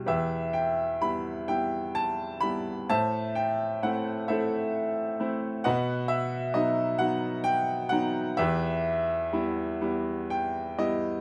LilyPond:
<<
  \new Staff \with { instrumentName = "Grand piano" } { \time 6/8 \key e \minor \tempo 4. = 43 << { e''8 g''8 b''8 g''8 a''8 b''8 | a''8 g''8 fis''8 e''4 r8 | fis''8 e''8 dis''8 fis''8 g''8 fis''8 | e''2 g''8 dis''8 | } \\ { <g' b'>4. r4. | <c'' e''>4. <a' c''>4. | <b' dis''>4. r4. | <g' b'>2 r4 | } >> }
  \new Staff \with { instrumentName = "Grand piano" } { \time 6/8 \key e \minor e,4 <g b e'>8 <g b e'>4 <g b e'>8 | a,4 <a c' e'>8 <a c' e'>4 <a c' e'>8 | b,4 <fis b dis'>8 <fis b dis'>4 <fis b dis'>8 | e,4 <g b e'>8 <g b e'>4 <g b e'>8 | }
>>